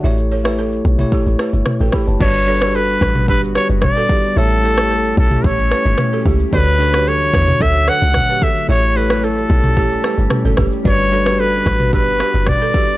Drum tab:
CC |----------------|x---------------|----------------|----------------|
HH |----------------|--o-------------|--o-------------|--o-------------|
SH |xxxxxxxxxxxxxxxx|xxxxxxxxxxxxxxxx|xxxxxxxxxxxxxxxx|xxxxxxxxxxxxxxxx|
SD |---r------r-r-r-|---r--r---r-r---|---r------r-r---|---r--r---r-r---|
T2 |-------o----o---|-------o----o---|-------o----o---|-------o----o---|
BD |------o-o-----o-|o-----o-o---o-o-|------o-o-----o-|o-----o-o---o-o-|

CC |----------------|----------------|
HH |----------o-----|--o-------------|
SH |xxxxxxxxxxxxxxxx|xxxxxxxxxxxxxxxx|
SD |---r------r-r-r-|---r--r---r-r---|
T2 |-------o----o---|-------o----o---|
BD |------o-o-----o-|o-----o-o---o-o-|